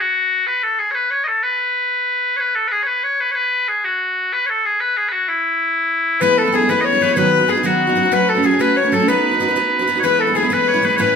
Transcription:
0.00 bagpipes F#4
0.47 bagpipes B4
0.63 bagpipes A4
0.79 bagpipes G#4
0.91 bagpipes B4 C#5
1.11 bagpipes C#5
1.24 bagpipes A4 D#5
1.43 bagpipes B4
2.36 bagpipes B4 C#5
2.55 bagpipes A4
2.68 bagpipes G#4 B4
2.83 bagpipes B4 C#5
3.03 bagpipes C#5
3.20 bagpipes B4
3.31 bagpipes B4 C#5
3.68 bagpipes G#4
3.84 bagpipes F#4
4.33 bagpipes B4
4.46 bagpipes A4 C#5
4.65 bagpipes G#4
4.80 bagpipes B4
4.97 bagpipes G#4
5.08 bagpipes F#4 B4
5.28 bagpipes E4
6.21 steel-string acoustic guitar E3 G#3 B3 E4, fiddle B4, bagpipes B4
6.38 fiddle A4, bagpipes A4
6.45 steel-string acoustic guitar G#3 B3 E4
6.52 steel-string acoustic guitar E3 G#3 B3 E4, fiddle G#4, bagpipes G#4
6.61 steel-string acoustic guitar G#3 B3 E4
6.69 steel-string acoustic guitar E3 G#3 B3 E4, bagpipes B4, fiddle B4
6.81 bagpipes D#5
6.85 fiddle C#5, bagpipes C#5
6.93 steel-string acoustic guitar G#3 B3 E4
7.01 steel-string acoustic guitar E3 G#3 B3 E4, bagpipes B4
7.09 steel-string acoustic guitar G#3 B3 E4
7.13 steel-string acoustic guitar D#3, bagpipes C#5
7.17 steel-string acoustic guitar F#3 B3 D#4 F#4, bagpipes B4, fiddle B4
7.40 steel-string acoustic guitar B3 D#4 F#4
7.48 steel-string acoustic guitar F#3 B3 D#4 F#4, fiddle G#4, bagpipes G#4
7.55 steel-string acoustic guitar B3 D#4 F#4
7.63 steel-string acoustic guitar D#3 F#3 B3 D#4 F#4, fiddle F#4, bagpipes F#4
7.87 steel-string acoustic guitar B3 D#4 F#4
7.95 steel-string acoustic guitar F#3 B3 D#4 F#4
8.03 steel-string acoustic guitar B3 D#4 F#4
8.12 steel-string acoustic guitar F#3 A3 C#4 F#4, fiddle B4, bagpipes B4
8.29 fiddle A4, bagpipes A4
8.35 steel-string acoustic guitar A3 C#4 F#4
8.43 steel-string acoustic guitar F#3 A3 C#4 F#4, bagpipes G#4, fiddle G#4
8.51 steel-string acoustic guitar A3 C#4 F#4
8.59 steel-string acoustic guitar F#3 A3 C#4 F#4, bagpipes B4, fiddle B4
8.76 bagpipes C#5, fiddle C#5
8.83 steel-string acoustic guitar A3 C#4 F#4
8.92 steel-string acoustic guitar F#3 A3 C#4 F#4, fiddle A4, bagpipes A4
9.00 steel-string acoustic guitar A3 C#4 F#4
9.07 steel-string acoustic guitar B3 D#4 F#4 B4, fiddle B4, bagpipes B4
9.31 steel-string acoustic guitar D#4 F#4 B4
9.40 steel-string acoustic guitar B3 D#4 F#4 B4
9.48 steel-string acoustic guitar D#4 F#4 B4
9.56 steel-string acoustic guitar B3 D#4 F#4 B4
9.79 steel-string acoustic guitar D#4 F#4 B4
9.87 steel-string acoustic guitar B3 D#4 F#4 B4
9.95 steel-string acoustic guitar D#4 F#4 B4
9.99 steel-string acoustic guitar E3, fiddle B4, bagpipes C#5
10.04 steel-string acoustic guitar G#3 B3 E4, bagpipes B4
10.19 fiddle A4, bagpipes A4
10.27 steel-string acoustic guitar G#3 B3 E4
10.35 steel-string acoustic guitar E3 G#3 B3 E4, fiddle G#4, bagpipes G#4
10.43 steel-string acoustic guitar G#3 B3 E4
10.50 steel-string acoustic guitar E3 G#3 B3 E4, fiddle B4, bagpipes B4
10.68 bagpipes C#5
10.74 steel-string acoustic guitar G#3 B3 E4
10.82 steel-string acoustic guitar E3 G#3 B3 E4, bagpipes B4
10.90 steel-string acoustic guitar G#3 B3 E4
10.96 steel-string acoustic guitar A2 E3 A3 C#4 E4, fiddle B4, bagpipes C#5
11.00 bagpipes B4

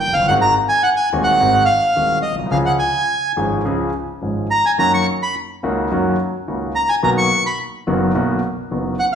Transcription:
0.00 bandoneon G5
0.07 grand piano F1
0.13 grand piano F#1, bandoneon F5
0.22 grand piano G1
0.28 grand piano G#1 G#2 D#3 G#3 C4 F#4, bandoneon F#5
0.41 bandoneon A#5
0.69 bandoneon G#5
0.83 bandoneon F#5
0.96 bandoneon G#5
1.13 grand piano D#1 D#2 D#3 G#3 C4 F#4
1.24 bandoneon F#5
1.40 grand piano G#1 G#2 D#3 G#3 C4 F#4
1.65 bandoneon F5
1.96 grand piano D#1 D#2 D#3 G#3 C4 F#4
2.22 bandoneon D#5
2.32 grand piano A#1
2.39 grand piano B1
2.46 grand piano C2
2.51 grand piano C#2 C#3 F3 G#3 C#4 G#4, bandoneon F5
2.66 bandoneon F#5
2.79 bandoneon G#5
3.37 grand piano G#1 G#2 F3 G#3 C#4 G#4
3.65 grand piano C#2 C#3 F3 G#3 C#4 G#4
4.21 grand piano G#1 G#2 F3 G#3 C#4 G#4
4.51 bandoneon A#5
4.66 bandoneon G#5
4.78 grand piano F#2 D#3 F#3 A#3 C#4 F#4, bandoneon A#5
4.94 bandoneon C#6
5.23 bandoneon B5
5.63 grand piano C#2 C#3 D#3 A#3 C#4 F#4
5.91 grand piano F#2 D#3 F#3 A#3 C#4 F#4
6.48 grand piano C#2 C#3 D#3 A#3 C#4 F#4
6.75 bandoneon A#5
6.89 bandoneon G#5
7.03 grand piano B1 B2 D#3 A#3 B3 F#4, bandoneon A#5
7.18 bandoneon C#6
7.46 bandoneon B5
7.87 grand piano F#1 F#2 D#3 A#3 B3 F#4
8.15 grand piano B1 B2 D#3 A#3 B3 F#4
8.71 grand piano F#1 F#2 D#3 A#3 B3 F#4
8.99 bandoneon F#5

